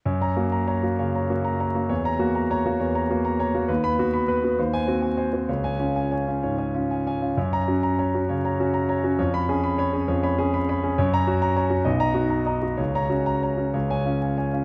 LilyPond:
<<
  \new Staff \with { instrumentName = "Grand piano" } { \time 4/4 \key fis \major \tempo 4 = 132 \tuplet 3/2 { cis''8 <cis'' ais''>8 fis'8 ais''8 <cis'' ais''>8 fis'8 cis''8 <cis'' ais''>8 fis'8 ais''8 <cis'' ais''>8 fis'8 } | \tuplet 3/2 { cis''8 <cis'' ais''>8 fis'8 ais''8 <cis'' ais''>8 fis'8 cis''8 <cis'' ais''>8 fis'8 ais''8 <cis'' ais''>8 fis'8 } | \tuplet 3/2 { b'8 <b' b''>8 fis'8 b''8 <b' b''>8 fis'8 bis'8 <bis' gis''>8 fis'8 gis''8 <bis' gis''>8 fis'8 } | \tuplet 3/2 { cis''8 <cis'' gis''>8 eis'8 gis''8 <cis'' gis''>8 eis'8 cis''8 <cis'' gis''>8 eis'8 gis''8 <cis'' gis''>8 eis'8 } |
\tuplet 3/2 { cis''8 <cis'' ais''>8 fis'8 ais''8 <cis'' ais''>8 fis'8 cis''8 <cis'' ais''>8 fis'8 ais''8 <cis'' ais''>8 fis'8 } | \tuplet 3/2 { cis''8 <cis'' b''>8 gis'8 b''8 <cis'' b''>8 gis'8 cis''8 <cis'' b''>8 gis'8 b''8 <cis'' b''>8 gis'8 } | \tuplet 3/2 { cis''8 <cis'' ais''>8 fis'8 ais''8 <cis'' ais''>8 fis'8 dis''8 <dis'' ais''>8 fis'8 ais''8 <dis'' ais''>8 fis'8 } | \tuplet 3/2 { cis''8 <cis'' ais''>8 fis'8 ais''8 <cis'' ais''>8 fis'8 cis''8 <cis'' gis''>8 eis'8 gis''8 <cis'' gis''>8 eis'8 } | }
  \new Staff \with { instrumentName = "Grand piano" } { \time 4/4 \key fis \major \tuplet 3/2 { fis,4 ais8~ ais8 r8 ais8 cis4 ais8~ ais8 r8 ais8 } | \tuplet 3/2 { e,4 ais8~ ais8 r8 ais8 e,4 ais8~ ais8 r8 ais8 } | \tuplet 3/2 { dis,4 b8~ b8 r8 b8 dis,4 bis8~ bis8 r8 bis8 } | \tuplet 3/2 { cis,4 cis'8~ cis'8 r8 cis'8 gis,4 cis'8~ cis'8 r8 cis'8 } |
\tuplet 3/2 { fis,4 cis'8~ cis'8 r8 cis'8 cis4 cis'8~ cis'8 r8 cis'8 } | \tuplet 3/2 { eis,4 cis'8~ cis'8 r8 cis'8 eis,4 cis'8~ cis'8 r8 cis'8 } | \tuplet 3/2 { fis,4 cis'8~ cis'8 r8 cis'8 b,,4 dis'8~ dis'8 r8 dis'8 } | \tuplet 3/2 { cis,4 cis'8~ cis'8 r8 cis'8 cis,4 cis'8~ cis'8 r8 cis'8 } | }
>>